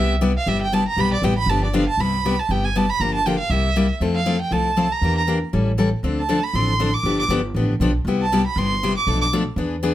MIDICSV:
0, 0, Header, 1, 4, 480
1, 0, Start_track
1, 0, Key_signature, 0, "major"
1, 0, Tempo, 252845
1, 1843, Time_signature, 4, 2, 24, 8
1, 18874, End_track
2, 0, Start_track
2, 0, Title_t, "Violin"
2, 0, Program_c, 0, 40
2, 705, Note_on_c, 0, 77, 86
2, 913, Note_on_c, 0, 76, 88
2, 941, Note_off_c, 0, 77, 0
2, 1160, Note_off_c, 0, 76, 0
2, 1172, Note_on_c, 0, 79, 102
2, 1401, Note_on_c, 0, 81, 88
2, 1429, Note_off_c, 0, 79, 0
2, 1650, Note_off_c, 0, 81, 0
2, 1670, Note_on_c, 0, 82, 96
2, 1896, Note_on_c, 0, 83, 109
2, 1925, Note_off_c, 0, 82, 0
2, 2138, Note_off_c, 0, 83, 0
2, 2156, Note_on_c, 0, 74, 83
2, 2359, Note_on_c, 0, 79, 97
2, 2387, Note_off_c, 0, 74, 0
2, 2609, Note_off_c, 0, 79, 0
2, 2620, Note_on_c, 0, 83, 105
2, 2837, Note_on_c, 0, 81, 93
2, 2865, Note_off_c, 0, 83, 0
2, 3087, Note_off_c, 0, 81, 0
2, 3126, Note_on_c, 0, 74, 56
2, 3321, Note_on_c, 0, 77, 92
2, 3350, Note_off_c, 0, 74, 0
2, 3569, Note_off_c, 0, 77, 0
2, 3586, Note_on_c, 0, 81, 96
2, 3799, Note_on_c, 0, 83, 94
2, 3827, Note_off_c, 0, 81, 0
2, 4539, Note_on_c, 0, 81, 84
2, 4568, Note_off_c, 0, 83, 0
2, 4760, Note_on_c, 0, 79, 83
2, 4789, Note_off_c, 0, 81, 0
2, 5026, Note_on_c, 0, 80, 94
2, 5055, Note_off_c, 0, 79, 0
2, 5251, Note_on_c, 0, 81, 81
2, 5280, Note_off_c, 0, 80, 0
2, 5499, Note_on_c, 0, 83, 109
2, 5527, Note_off_c, 0, 81, 0
2, 5705, Note_on_c, 0, 82, 85
2, 5734, Note_off_c, 0, 83, 0
2, 5950, Note_off_c, 0, 82, 0
2, 5962, Note_on_c, 0, 81, 99
2, 6187, Note_on_c, 0, 79, 88
2, 6215, Note_off_c, 0, 81, 0
2, 6413, Note_off_c, 0, 79, 0
2, 6424, Note_on_c, 0, 77, 88
2, 6652, Note_on_c, 0, 76, 87
2, 6680, Note_off_c, 0, 77, 0
2, 7502, Note_off_c, 0, 76, 0
2, 7876, Note_on_c, 0, 77, 89
2, 8321, Note_off_c, 0, 77, 0
2, 8380, Note_on_c, 0, 79, 91
2, 8583, Note_on_c, 0, 81, 89
2, 8611, Note_off_c, 0, 79, 0
2, 9338, Note_on_c, 0, 82, 91
2, 9367, Note_off_c, 0, 81, 0
2, 9806, Note_off_c, 0, 82, 0
2, 9823, Note_on_c, 0, 82, 92
2, 10007, Note_off_c, 0, 82, 0
2, 11753, Note_on_c, 0, 81, 85
2, 12212, Note_on_c, 0, 83, 97
2, 12241, Note_off_c, 0, 81, 0
2, 12431, Note_on_c, 0, 84, 95
2, 12460, Note_off_c, 0, 83, 0
2, 13172, Note_on_c, 0, 86, 94
2, 13201, Note_off_c, 0, 84, 0
2, 13645, Note_off_c, 0, 86, 0
2, 13657, Note_on_c, 0, 86, 95
2, 13845, Note_off_c, 0, 86, 0
2, 15600, Note_on_c, 0, 81, 92
2, 16026, Note_off_c, 0, 81, 0
2, 16072, Note_on_c, 0, 83, 96
2, 16288, Note_on_c, 0, 84, 101
2, 16316, Note_off_c, 0, 83, 0
2, 17015, Note_off_c, 0, 84, 0
2, 17035, Note_on_c, 0, 86, 97
2, 17462, Note_off_c, 0, 86, 0
2, 17490, Note_on_c, 0, 86, 103
2, 17613, Note_off_c, 0, 86, 0
2, 18874, End_track
3, 0, Start_track
3, 0, Title_t, "Steel-string acoustic guitar"
3, 0, Program_c, 1, 25
3, 0, Note_on_c, 1, 48, 70
3, 0, Note_on_c, 1, 55, 64
3, 0, Note_on_c, 1, 59, 74
3, 0, Note_on_c, 1, 64, 71
3, 0, Note_on_c, 1, 67, 87
3, 271, Note_off_c, 1, 48, 0
3, 273, Note_off_c, 1, 55, 0
3, 278, Note_off_c, 1, 64, 0
3, 279, Note_off_c, 1, 67, 0
3, 280, Note_off_c, 1, 59, 0
3, 402, Note_on_c, 1, 48, 90
3, 402, Note_on_c, 1, 55, 92
3, 412, Note_on_c, 1, 59, 95
3, 414, Note_on_c, 1, 64, 93
3, 414, Note_on_c, 1, 67, 95
3, 595, Note_off_c, 1, 48, 0
3, 595, Note_off_c, 1, 55, 0
3, 600, Note_off_c, 1, 59, 0
3, 601, Note_off_c, 1, 64, 0
3, 601, Note_off_c, 1, 67, 0
3, 886, Note_on_c, 1, 48, 68
3, 895, Note_on_c, 1, 59, 60
3, 898, Note_on_c, 1, 55, 72
3, 899, Note_on_c, 1, 64, 67
3, 902, Note_on_c, 1, 67, 69
3, 1227, Note_off_c, 1, 48, 0
3, 1231, Note_off_c, 1, 59, 0
3, 1233, Note_off_c, 1, 55, 0
3, 1233, Note_off_c, 1, 64, 0
3, 1235, Note_off_c, 1, 67, 0
3, 1376, Note_on_c, 1, 55, 88
3, 1377, Note_on_c, 1, 48, 85
3, 1387, Note_on_c, 1, 64, 97
3, 1390, Note_on_c, 1, 59, 97
3, 1391, Note_on_c, 1, 67, 102
3, 1561, Note_off_c, 1, 48, 0
3, 1561, Note_off_c, 1, 55, 0
3, 1567, Note_off_c, 1, 64, 0
3, 1568, Note_off_c, 1, 59, 0
3, 1569, Note_off_c, 1, 67, 0
3, 1849, Note_on_c, 1, 48, 73
3, 1855, Note_on_c, 1, 55, 72
3, 1861, Note_on_c, 1, 64, 74
3, 1862, Note_on_c, 1, 59, 79
3, 1864, Note_on_c, 1, 67, 74
3, 2188, Note_off_c, 1, 48, 0
3, 2191, Note_off_c, 1, 55, 0
3, 2194, Note_off_c, 1, 59, 0
3, 2194, Note_off_c, 1, 64, 0
3, 2195, Note_off_c, 1, 67, 0
3, 2337, Note_on_c, 1, 48, 92
3, 2345, Note_on_c, 1, 55, 83
3, 2347, Note_on_c, 1, 59, 92
3, 2351, Note_on_c, 1, 64, 92
3, 2352, Note_on_c, 1, 67, 105
3, 2521, Note_off_c, 1, 48, 0
3, 2525, Note_off_c, 1, 55, 0
3, 2526, Note_off_c, 1, 59, 0
3, 2528, Note_off_c, 1, 64, 0
3, 2529, Note_off_c, 1, 67, 0
3, 2836, Note_on_c, 1, 50, 70
3, 2836, Note_on_c, 1, 53, 70
3, 2842, Note_on_c, 1, 59, 60
3, 2845, Note_on_c, 1, 67, 71
3, 2846, Note_on_c, 1, 62, 72
3, 3161, Note_off_c, 1, 50, 0
3, 3161, Note_off_c, 1, 53, 0
3, 3164, Note_off_c, 1, 59, 0
3, 3165, Note_off_c, 1, 67, 0
3, 3166, Note_off_c, 1, 62, 0
3, 3293, Note_on_c, 1, 50, 92
3, 3297, Note_on_c, 1, 53, 95
3, 3302, Note_on_c, 1, 67, 96
3, 3304, Note_on_c, 1, 59, 96
3, 3304, Note_on_c, 1, 62, 101
3, 3479, Note_off_c, 1, 50, 0
3, 3481, Note_off_c, 1, 53, 0
3, 3483, Note_off_c, 1, 67, 0
3, 3484, Note_off_c, 1, 59, 0
3, 3484, Note_off_c, 1, 62, 0
3, 3788, Note_on_c, 1, 48, 63
3, 3789, Note_on_c, 1, 55, 64
3, 3795, Note_on_c, 1, 59, 65
3, 3803, Note_on_c, 1, 64, 68
3, 3806, Note_on_c, 1, 67, 62
3, 4117, Note_off_c, 1, 48, 0
3, 4117, Note_off_c, 1, 55, 0
3, 4120, Note_off_c, 1, 59, 0
3, 4124, Note_off_c, 1, 64, 0
3, 4126, Note_off_c, 1, 67, 0
3, 4271, Note_on_c, 1, 48, 81
3, 4275, Note_on_c, 1, 55, 79
3, 4284, Note_on_c, 1, 64, 84
3, 4285, Note_on_c, 1, 59, 94
3, 4290, Note_on_c, 1, 67, 88
3, 4448, Note_off_c, 1, 48, 0
3, 4450, Note_off_c, 1, 55, 0
3, 4454, Note_off_c, 1, 64, 0
3, 4455, Note_off_c, 1, 59, 0
3, 4457, Note_off_c, 1, 67, 0
3, 4749, Note_on_c, 1, 48, 55
3, 4749, Note_on_c, 1, 55, 64
3, 4752, Note_on_c, 1, 64, 62
3, 4755, Note_on_c, 1, 59, 62
3, 4761, Note_on_c, 1, 67, 64
3, 5077, Note_off_c, 1, 48, 0
3, 5077, Note_off_c, 1, 55, 0
3, 5079, Note_off_c, 1, 64, 0
3, 5081, Note_off_c, 1, 59, 0
3, 5083, Note_off_c, 1, 67, 0
3, 5230, Note_on_c, 1, 55, 91
3, 5234, Note_on_c, 1, 48, 82
3, 5238, Note_on_c, 1, 59, 86
3, 5247, Note_on_c, 1, 64, 87
3, 5252, Note_on_c, 1, 67, 89
3, 5407, Note_off_c, 1, 55, 0
3, 5409, Note_off_c, 1, 48, 0
3, 5411, Note_off_c, 1, 59, 0
3, 5416, Note_off_c, 1, 64, 0
3, 5418, Note_off_c, 1, 67, 0
3, 5714, Note_on_c, 1, 50, 68
3, 5716, Note_on_c, 1, 53, 68
3, 5723, Note_on_c, 1, 58, 67
3, 5729, Note_on_c, 1, 62, 70
3, 5730, Note_on_c, 1, 67, 68
3, 6040, Note_off_c, 1, 50, 0
3, 6041, Note_off_c, 1, 53, 0
3, 6045, Note_off_c, 1, 58, 0
3, 6048, Note_off_c, 1, 62, 0
3, 6048, Note_off_c, 1, 67, 0
3, 6187, Note_on_c, 1, 50, 84
3, 6194, Note_on_c, 1, 53, 84
3, 6196, Note_on_c, 1, 58, 84
3, 6202, Note_on_c, 1, 62, 94
3, 6207, Note_on_c, 1, 67, 92
3, 6366, Note_off_c, 1, 50, 0
3, 6370, Note_off_c, 1, 53, 0
3, 6371, Note_off_c, 1, 58, 0
3, 6374, Note_off_c, 1, 62, 0
3, 6376, Note_off_c, 1, 67, 0
3, 6667, Note_on_c, 1, 48, 59
3, 6672, Note_on_c, 1, 55, 62
3, 6677, Note_on_c, 1, 64, 66
3, 6679, Note_on_c, 1, 58, 63
3, 6686, Note_on_c, 1, 67, 64
3, 6997, Note_off_c, 1, 48, 0
3, 7000, Note_off_c, 1, 55, 0
3, 7002, Note_off_c, 1, 64, 0
3, 7003, Note_off_c, 1, 58, 0
3, 7006, Note_off_c, 1, 67, 0
3, 7135, Note_on_c, 1, 48, 83
3, 7140, Note_on_c, 1, 58, 98
3, 7147, Note_on_c, 1, 55, 96
3, 7150, Note_on_c, 1, 64, 88
3, 7154, Note_on_c, 1, 67, 93
3, 7321, Note_off_c, 1, 48, 0
3, 7323, Note_off_c, 1, 58, 0
3, 7327, Note_off_c, 1, 55, 0
3, 7328, Note_off_c, 1, 64, 0
3, 7330, Note_off_c, 1, 67, 0
3, 7612, Note_on_c, 1, 53, 67
3, 7620, Note_on_c, 1, 57, 71
3, 7623, Note_on_c, 1, 60, 75
3, 7626, Note_on_c, 1, 64, 69
3, 7629, Note_on_c, 1, 69, 73
3, 7950, Note_off_c, 1, 53, 0
3, 7954, Note_off_c, 1, 57, 0
3, 7956, Note_off_c, 1, 60, 0
3, 7957, Note_off_c, 1, 64, 0
3, 7958, Note_off_c, 1, 69, 0
3, 8082, Note_on_c, 1, 53, 89
3, 8086, Note_on_c, 1, 60, 88
3, 8087, Note_on_c, 1, 57, 91
3, 8093, Note_on_c, 1, 64, 87
3, 8099, Note_on_c, 1, 69, 94
3, 8275, Note_off_c, 1, 53, 0
3, 8276, Note_off_c, 1, 60, 0
3, 8277, Note_off_c, 1, 57, 0
3, 8280, Note_off_c, 1, 64, 0
3, 8283, Note_off_c, 1, 69, 0
3, 8570, Note_on_c, 1, 53, 63
3, 8578, Note_on_c, 1, 57, 61
3, 8579, Note_on_c, 1, 60, 57
3, 8585, Note_on_c, 1, 64, 69
3, 8591, Note_on_c, 1, 69, 76
3, 8909, Note_off_c, 1, 53, 0
3, 8913, Note_off_c, 1, 57, 0
3, 8914, Note_off_c, 1, 60, 0
3, 8917, Note_off_c, 1, 64, 0
3, 8920, Note_off_c, 1, 69, 0
3, 9047, Note_on_c, 1, 53, 88
3, 9051, Note_on_c, 1, 57, 88
3, 9060, Note_on_c, 1, 60, 92
3, 9061, Note_on_c, 1, 64, 90
3, 9062, Note_on_c, 1, 69, 93
3, 9238, Note_off_c, 1, 53, 0
3, 9239, Note_off_c, 1, 57, 0
3, 9244, Note_off_c, 1, 60, 0
3, 9244, Note_off_c, 1, 64, 0
3, 9245, Note_off_c, 1, 69, 0
3, 9545, Note_on_c, 1, 52, 60
3, 9553, Note_on_c, 1, 58, 67
3, 9566, Note_on_c, 1, 62, 68
3, 9574, Note_on_c, 1, 67, 73
3, 9877, Note_off_c, 1, 52, 0
3, 9882, Note_off_c, 1, 58, 0
3, 9888, Note_off_c, 1, 62, 0
3, 9892, Note_off_c, 1, 67, 0
3, 10008, Note_on_c, 1, 52, 80
3, 10019, Note_on_c, 1, 58, 92
3, 10022, Note_on_c, 1, 67, 92
3, 10027, Note_on_c, 1, 62, 89
3, 10198, Note_off_c, 1, 52, 0
3, 10204, Note_off_c, 1, 58, 0
3, 10206, Note_off_c, 1, 67, 0
3, 10208, Note_off_c, 1, 62, 0
3, 10496, Note_on_c, 1, 52, 51
3, 10498, Note_on_c, 1, 55, 60
3, 10502, Note_on_c, 1, 61, 61
3, 10502, Note_on_c, 1, 64, 65
3, 10509, Note_on_c, 1, 69, 65
3, 10834, Note_off_c, 1, 52, 0
3, 10835, Note_off_c, 1, 55, 0
3, 10837, Note_off_c, 1, 61, 0
3, 10837, Note_off_c, 1, 64, 0
3, 10840, Note_off_c, 1, 69, 0
3, 10967, Note_on_c, 1, 52, 78
3, 10975, Note_on_c, 1, 55, 86
3, 10975, Note_on_c, 1, 61, 77
3, 10985, Note_on_c, 1, 64, 82
3, 10985, Note_on_c, 1, 69, 102
3, 11158, Note_off_c, 1, 52, 0
3, 11162, Note_off_c, 1, 55, 0
3, 11163, Note_off_c, 1, 61, 0
3, 11167, Note_off_c, 1, 69, 0
3, 11168, Note_off_c, 1, 64, 0
3, 11461, Note_on_c, 1, 50, 71
3, 11465, Note_on_c, 1, 60, 76
3, 11466, Note_on_c, 1, 53, 58
3, 11472, Note_on_c, 1, 69, 70
3, 11475, Note_on_c, 1, 62, 72
3, 11796, Note_off_c, 1, 50, 0
3, 11799, Note_off_c, 1, 53, 0
3, 11799, Note_off_c, 1, 60, 0
3, 11802, Note_off_c, 1, 69, 0
3, 11803, Note_off_c, 1, 62, 0
3, 11935, Note_on_c, 1, 60, 89
3, 11938, Note_on_c, 1, 50, 85
3, 11939, Note_on_c, 1, 53, 88
3, 11948, Note_on_c, 1, 62, 97
3, 11949, Note_on_c, 1, 69, 96
3, 12123, Note_off_c, 1, 60, 0
3, 12124, Note_off_c, 1, 50, 0
3, 12125, Note_off_c, 1, 53, 0
3, 12129, Note_off_c, 1, 62, 0
3, 12130, Note_off_c, 1, 69, 0
3, 12429, Note_on_c, 1, 50, 60
3, 12432, Note_on_c, 1, 53, 65
3, 12434, Note_on_c, 1, 60, 66
3, 12442, Note_on_c, 1, 62, 65
3, 12448, Note_on_c, 1, 69, 65
3, 12760, Note_off_c, 1, 50, 0
3, 12762, Note_off_c, 1, 53, 0
3, 12763, Note_off_c, 1, 60, 0
3, 12767, Note_off_c, 1, 62, 0
3, 12770, Note_off_c, 1, 69, 0
3, 12898, Note_on_c, 1, 50, 84
3, 12900, Note_on_c, 1, 53, 84
3, 12910, Note_on_c, 1, 60, 95
3, 12911, Note_on_c, 1, 62, 93
3, 12919, Note_on_c, 1, 69, 97
3, 13085, Note_off_c, 1, 50, 0
3, 13086, Note_off_c, 1, 53, 0
3, 13091, Note_off_c, 1, 60, 0
3, 13091, Note_off_c, 1, 62, 0
3, 13095, Note_off_c, 1, 69, 0
3, 13389, Note_on_c, 1, 50, 67
3, 13393, Note_on_c, 1, 53, 72
3, 13398, Note_on_c, 1, 67, 79
3, 13401, Note_on_c, 1, 59, 65
3, 13401, Note_on_c, 1, 62, 72
3, 13721, Note_off_c, 1, 50, 0
3, 13723, Note_off_c, 1, 53, 0
3, 13725, Note_off_c, 1, 67, 0
3, 13727, Note_off_c, 1, 59, 0
3, 13727, Note_off_c, 1, 62, 0
3, 13853, Note_on_c, 1, 50, 83
3, 13856, Note_on_c, 1, 53, 87
3, 13864, Note_on_c, 1, 59, 96
3, 13868, Note_on_c, 1, 62, 102
3, 13870, Note_on_c, 1, 67, 102
3, 14042, Note_off_c, 1, 50, 0
3, 14044, Note_off_c, 1, 53, 0
3, 14048, Note_off_c, 1, 59, 0
3, 14050, Note_off_c, 1, 62, 0
3, 14051, Note_off_c, 1, 67, 0
3, 14355, Note_on_c, 1, 50, 62
3, 14358, Note_on_c, 1, 53, 63
3, 14358, Note_on_c, 1, 59, 67
3, 14362, Note_on_c, 1, 62, 68
3, 14362, Note_on_c, 1, 67, 63
3, 14684, Note_off_c, 1, 50, 0
3, 14685, Note_off_c, 1, 53, 0
3, 14685, Note_off_c, 1, 59, 0
3, 14687, Note_off_c, 1, 62, 0
3, 14688, Note_off_c, 1, 67, 0
3, 14822, Note_on_c, 1, 50, 91
3, 14828, Note_on_c, 1, 53, 97
3, 14840, Note_on_c, 1, 59, 86
3, 14841, Note_on_c, 1, 62, 97
3, 14848, Note_on_c, 1, 67, 99
3, 15007, Note_off_c, 1, 50, 0
3, 15010, Note_off_c, 1, 53, 0
3, 15016, Note_off_c, 1, 59, 0
3, 15016, Note_off_c, 1, 62, 0
3, 15020, Note_off_c, 1, 67, 0
3, 15318, Note_on_c, 1, 48, 72
3, 15327, Note_on_c, 1, 55, 74
3, 15332, Note_on_c, 1, 59, 81
3, 15338, Note_on_c, 1, 64, 77
3, 15342, Note_on_c, 1, 67, 80
3, 15645, Note_off_c, 1, 48, 0
3, 15650, Note_off_c, 1, 55, 0
3, 15652, Note_off_c, 1, 59, 0
3, 15655, Note_off_c, 1, 64, 0
3, 15657, Note_off_c, 1, 67, 0
3, 15799, Note_on_c, 1, 48, 99
3, 15805, Note_on_c, 1, 55, 95
3, 15811, Note_on_c, 1, 59, 91
3, 15812, Note_on_c, 1, 64, 108
3, 15815, Note_on_c, 1, 67, 99
3, 15975, Note_off_c, 1, 48, 0
3, 15978, Note_off_c, 1, 55, 0
3, 15981, Note_off_c, 1, 59, 0
3, 15982, Note_off_c, 1, 64, 0
3, 15983, Note_off_c, 1, 67, 0
3, 16275, Note_on_c, 1, 48, 67
3, 16283, Note_on_c, 1, 55, 62
3, 16288, Note_on_c, 1, 59, 70
3, 16290, Note_on_c, 1, 64, 74
3, 16296, Note_on_c, 1, 67, 72
3, 16603, Note_off_c, 1, 48, 0
3, 16607, Note_off_c, 1, 55, 0
3, 16610, Note_off_c, 1, 59, 0
3, 16610, Note_off_c, 1, 64, 0
3, 16614, Note_off_c, 1, 67, 0
3, 16765, Note_on_c, 1, 48, 86
3, 16765, Note_on_c, 1, 55, 101
3, 16771, Note_on_c, 1, 64, 101
3, 16772, Note_on_c, 1, 59, 96
3, 16782, Note_on_c, 1, 67, 109
3, 16937, Note_off_c, 1, 48, 0
3, 16937, Note_off_c, 1, 55, 0
3, 16940, Note_off_c, 1, 64, 0
3, 16941, Note_off_c, 1, 59, 0
3, 16946, Note_off_c, 1, 67, 0
3, 17221, Note_on_c, 1, 47, 68
3, 17227, Note_on_c, 1, 57, 67
3, 17230, Note_on_c, 1, 53, 68
3, 17234, Note_on_c, 1, 62, 79
3, 17234, Note_on_c, 1, 69, 83
3, 17555, Note_off_c, 1, 47, 0
3, 17558, Note_off_c, 1, 57, 0
3, 17560, Note_off_c, 1, 53, 0
3, 17562, Note_off_c, 1, 62, 0
3, 17562, Note_off_c, 1, 69, 0
3, 17711, Note_on_c, 1, 47, 92
3, 17715, Note_on_c, 1, 53, 100
3, 17717, Note_on_c, 1, 57, 101
3, 17717, Note_on_c, 1, 62, 93
3, 17727, Note_on_c, 1, 69, 104
3, 17890, Note_off_c, 1, 47, 0
3, 17892, Note_off_c, 1, 53, 0
3, 17893, Note_off_c, 1, 57, 0
3, 17893, Note_off_c, 1, 62, 0
3, 17898, Note_off_c, 1, 69, 0
3, 18178, Note_on_c, 1, 52, 68
3, 18182, Note_on_c, 1, 59, 67
3, 18184, Note_on_c, 1, 62, 66
3, 18190, Note_on_c, 1, 68, 67
3, 18514, Note_off_c, 1, 52, 0
3, 18515, Note_off_c, 1, 59, 0
3, 18516, Note_off_c, 1, 62, 0
3, 18519, Note_off_c, 1, 68, 0
3, 18655, Note_on_c, 1, 52, 100
3, 18662, Note_on_c, 1, 59, 90
3, 18665, Note_on_c, 1, 62, 97
3, 18671, Note_on_c, 1, 68, 106
3, 18841, Note_off_c, 1, 52, 0
3, 18844, Note_off_c, 1, 59, 0
3, 18846, Note_off_c, 1, 62, 0
3, 18849, Note_off_c, 1, 68, 0
3, 18874, End_track
4, 0, Start_track
4, 0, Title_t, "Upright bass"
4, 0, Program_c, 2, 32
4, 0, Note_on_c, 2, 36, 85
4, 692, Note_off_c, 2, 36, 0
4, 882, Note_on_c, 2, 31, 84
4, 1650, Note_off_c, 2, 31, 0
4, 1832, Note_on_c, 2, 35, 77
4, 2244, Note_off_c, 2, 35, 0
4, 2310, Note_on_c, 2, 33, 81
4, 2723, Note_off_c, 2, 33, 0
4, 2774, Note_on_c, 2, 31, 92
4, 3553, Note_off_c, 2, 31, 0
4, 3747, Note_on_c, 2, 36, 72
4, 4521, Note_off_c, 2, 36, 0
4, 4723, Note_on_c, 2, 31, 77
4, 5491, Note_off_c, 2, 31, 0
4, 5690, Note_on_c, 2, 31, 82
4, 6455, Note_off_c, 2, 31, 0
4, 6637, Note_on_c, 2, 36, 83
4, 7408, Note_off_c, 2, 36, 0
4, 7602, Note_on_c, 2, 41, 77
4, 8371, Note_off_c, 2, 41, 0
4, 8558, Note_on_c, 2, 36, 76
4, 9329, Note_off_c, 2, 36, 0
4, 9520, Note_on_c, 2, 40, 83
4, 10291, Note_off_c, 2, 40, 0
4, 10498, Note_on_c, 2, 33, 83
4, 11262, Note_off_c, 2, 33, 0
4, 11445, Note_on_c, 2, 38, 77
4, 12214, Note_off_c, 2, 38, 0
4, 12405, Note_on_c, 2, 33, 81
4, 13174, Note_off_c, 2, 33, 0
4, 13350, Note_on_c, 2, 31, 82
4, 13742, Note_off_c, 2, 31, 0
4, 13827, Note_on_c, 2, 31, 81
4, 14244, Note_off_c, 2, 31, 0
4, 14322, Note_on_c, 2, 33, 81
4, 14733, Note_off_c, 2, 33, 0
4, 14804, Note_on_c, 2, 35, 77
4, 15214, Note_off_c, 2, 35, 0
4, 15274, Note_on_c, 2, 36, 84
4, 16048, Note_off_c, 2, 36, 0
4, 16247, Note_on_c, 2, 31, 91
4, 17015, Note_off_c, 2, 31, 0
4, 17213, Note_on_c, 2, 35, 94
4, 17978, Note_off_c, 2, 35, 0
4, 18154, Note_on_c, 2, 40, 95
4, 18874, Note_off_c, 2, 40, 0
4, 18874, End_track
0, 0, End_of_file